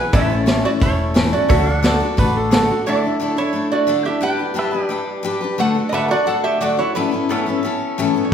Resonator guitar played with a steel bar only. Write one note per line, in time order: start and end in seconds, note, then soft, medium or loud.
0.00 0.13 B4 medium
0.00 0.14 G#5 loud
0.13 0.61 A4 medium
0.13 0.61 E5 loud
0.65 0.70 F#4 medium
0.65 0.70 D5 loud
0.82 1.30 E4 medium
0.82 1.29 C#5 medium
1.33 2.48 F#4 medium
1.33 2.48 D5 medium
2.87 3.35 A4 medium
2.87 3.26 D5 medium
3.26 3.38 C#5 medium
3.38 3.69 E4 medium
3.38 3.71 C#5 loud
3.72 4.04 F#4 medium
3.72 4.07 D5 loud
4.05 4.21 G4 medium
4.05 4.23 E5 loud
4.23 4.71 B4 medium
4.23 4.58 G5 loud
4.58 4.70 F#5 loud
5.60 5.87 A4 medium
5.60 5.87 F#5 loud
5.89 5.93 D#5 medium
5.94 6.09 A4 medium
5.94 6.11 E5 loud
6.11 6.26 F#4 medium
6.11 6.28 D5 loud
6.27 6.43 A4 medium
6.27 6.43 F#5 loud
6.44 6.60 G4 medium
6.44 6.61 E5 loud
6.61 6.77 F#4 medium
6.61 6.78 D5 loud
6.78 6.95 E4 medium
6.78 6.95 C#5 medium
6.95 7.60 E4 medium
6.95 7.63 B4 medium
8.25 8.32 C#5 medium